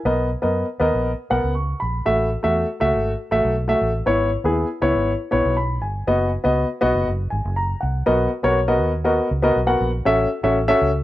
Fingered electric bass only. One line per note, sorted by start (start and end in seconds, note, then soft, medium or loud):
0.05 0.34 B1 loud
0.44 0.63 F#2 medium
0.80 0.90 D#2 medium
0.94 1.13 A#1 medium
1.31 1.41 B1 medium
1.44 1.72 C#2 medium
1.82 2.01 A#1 medium
2.07 2.35 A1 loud
2.44 2.63 E2 medium
2.82 2.91 C#2 loud
2.95 3.14 G#1 medium
3.32 3.41 A1 medium
3.45 3.73 B1 medium
3.81 4.01 A1 medium
4.07 4.35 G#1 medium
4.44 4.63 D#2 medium
4.82 4.92 C#2 medium
4.95 5.14 G#1 medium
5.33 5.42 A#1 loud
5.45 5.83 B1 medium
5.83 6.02 G1 medium
6.08 6.36 F#1 loud
6.45 6.64 C#2 medium
6.83 6.92 B1 medium
6.95 7.04 F#1 medium
7.08 7.26 F#1 medium
7.32 7.42 G#1 medium
7.45 7.73 F#1 medium
7.83 8.01 C2 loud
8.08 8.26 B1 loud
8.44 8.81 B1 medium
8.81 9.19 D#2 loud
9.31 9.50 C#2 medium
9.56 9.75 B1 medium
9.81 10.00 A#1 loud
10.06 10.25 A1 loud
10.44 10.72 A1 medium
10.82 11.04 C#2 loud